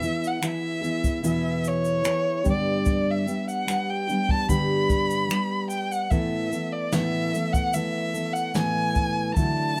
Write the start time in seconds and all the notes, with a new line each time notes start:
Already playing: E5
0.01 E3 B3 E4 G#4, shaker
0.24 F#5, shaker
0.41 E3 B3 E4 G#4, finger snap, shaker
0.47 E5
0.81 E3 B3 E4 G#4, shaker
1.04 kick, shaker
1.22 E2 B2 E3 B3 E4 G#4, shaker
1.27 E5
1.64 C#5, shaker
1.85 shaker
2.04 E3 B3 E4 G#4, finger snap, shaker
2.44 G2 D3 G3 B3 D4 G4, kick, shaker
2.50 D5
2.85 kick, shaker
3.11 E5
3.26 G3 B3 D4 G4, shaker
3.49 F#5, shaker
3.67 G3 B3 D4 G4, finger snap, shaker
3.90 G5
4.08 G3 B3 D4 G4, shaker
4.29 A5, kick
4.48 G2 D3 G3 B3 D4 G4 B5, kick, shaker
4.90 kick, shaker
5.10 shaker
5.29 G3 B3 D4 G4, finger snap, shaker
5.70 G5, shaker
5.92 F#5, shaker
6.10 A2 E3 A3 B3 A4 E5, kick, shaker
6.51 A3 B3 A4, shaker
6.72 D5
6.92 A2 E3 A3 B3 A4 E5, snare, shaker
7.33 A3 B3 A4, shaker
7.53 F#5, kick, shaker
7.73 E3 A3 B3 A4 E5, shaker
8.14 A3 B3 A4, shaker
8.33 F#5, shaker
8.54 A2 E3 A3 B3 A4 G#5, snare, shaker
8.95 kick, shaker
9.35 D3 F#3 A3 D4 E4 A5, kick, shaker
9.76 E4